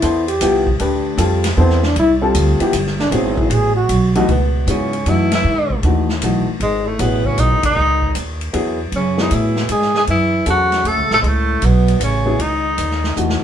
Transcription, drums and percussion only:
0.02 hi-hat pedal medium
0.02 ride medium
0.28 ride medium
0.41 hi-hat pedal medium
0.41 ride medium
0.67 kick medium
0.79 ride medium
1.18 hi-hat pedal soft
1.18 ride medium
1.44 snare medium
1.44 ride medium
1.70 snare soft
1.83 snare soft
1.96 ride medium
2.35 hi-hat pedal medium
2.35 ride medium
2.60 ride medium
2.73 hi-hat pedal medium
2.73 ride medium
2.86 snare soft
2.99 snare soft
3.12 ride medium
3.38 kick medium
3.50 ride medium
3.89 hi-hat pedal medium
3.89 ride medium
4.15 ride medium
4.29 ride soft
4.67 hi-hat pedal medium
4.67 ride medium
4.93 ride soft
5.06 hi-hat pedal soft
5.06 ride medium
5.32 snare medium
5.32 ride medium
5.70 kick medium
5.83 ride medium
6.09 snare soft
6.22 hi-hat pedal soft
6.22 ride medium
6.60 ride medium
6.99 hi-hat pedal soft
6.99 ride medium
7.25 kick soft
7.38 hi-hat pedal soft
7.38 ride medium
7.63 kick medium
7.63 ride medium
8.02 kick soft
8.15 hi-hat pedal medium
8.15 ride medium
8.41 ride soft
8.54 ride medium
8.92 ride medium
9.18 snare medium
9.31 hi-hat pedal soft
9.31 ride medium
9.56 snare medium
9.69 hi-hat pedal soft
9.69 ride medium
9.82 snare soft
9.95 snare soft
10.07 ride soft
10.46 hi-hat pedal soft
10.46 ride medium
10.72 snare soft
10.72 ride soft
10.85 ride medium
11.11 snare soft
11.24 ride soft
11.62 hi-hat pedal soft
11.62 ride medium
11.88 ride soft
12.01 hi-hat pedal medium
12.01 ride medium
12.39 ride medium
12.78 hi-hat pedal soft
12.78 ride medium
12.91 snare soft
13.04 snare soft
13.17 hi-hat pedal medium
13.29 snare medium

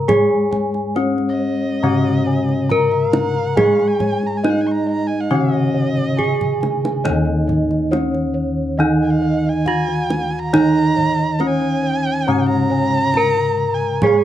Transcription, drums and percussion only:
0.09 kendang low medium
0.53 kendang low medium
0.74 kendang slap soft
0.96 kendang high soft
1.18 kendang slap soft
2.49 kendang slap soft
2.70 kendang low soft
2.91 kendang slap soft
3.13 kendang high medium
3.57 kendang high medium
3.57 kendang low medium
3.79 kendang slap soft
4.00 kendang low medium
4.23 kendang slap soft
4.44 kendang high medium
5.54 kendang slap soft
5.97 kendang low soft
6.19 kendang low soft
6.41 kendang low soft
6.63 kendang high medium
6.85 kendang high medium
7.05 kendang low medium
7.49 kendang low medium
7.71 kendang slap soft
7.93 kendang high medium
8.15 kendang slap soft
9.45 kendang slap soft
9.66 kendang low soft
9.88 kendang slap soft
10.10 kendang high soft
10.54 kendang high soft
10.54 kendang low medium
10.97 kendang low soft
11.19 kendang slap soft
11.40 kendang high soft
11.62 kendang slap soft
12.92 kendang slap soft
13.14 kendang high soft
13.14 kendang low soft
13.37 kendang slap soft
14.02 kendang low medium

